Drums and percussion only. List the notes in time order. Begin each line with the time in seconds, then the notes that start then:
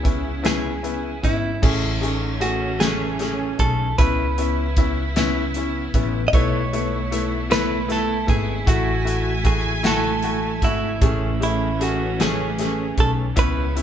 0.05 kick, closed hi-hat
0.45 snare, closed hi-hat
0.84 closed hi-hat
1.24 kick, closed hi-hat
1.63 kick, crash
2.03 closed hi-hat
2.41 closed hi-hat
2.80 snare, closed hi-hat
3.19 snare, closed hi-hat
3.59 kick, closed hi-hat
3.98 kick, closed hi-hat
4.38 closed hi-hat
4.76 kick, closed hi-hat
5.16 snare, closed hi-hat
5.54 closed hi-hat
5.94 kick, closed hi-hat
6.33 kick, closed hi-hat
6.73 closed hi-hat
7.12 closed hi-hat
7.51 snare, closed hi-hat
7.90 snare, closed hi-hat
8.28 kick, closed hi-hat
8.67 kick, closed hi-hat
9.07 closed hi-hat
9.45 kick, closed hi-hat
9.84 snare, closed hi-hat
10.22 closed hi-hat
10.62 kick, closed hi-hat
11.01 kick, closed hi-hat
11.42 closed hi-hat
11.81 closed hi-hat
12.20 snare, closed hi-hat
12.58 snare, closed hi-hat
12.98 kick, closed hi-hat
13.36 kick, closed hi-hat
13.77 closed hi-hat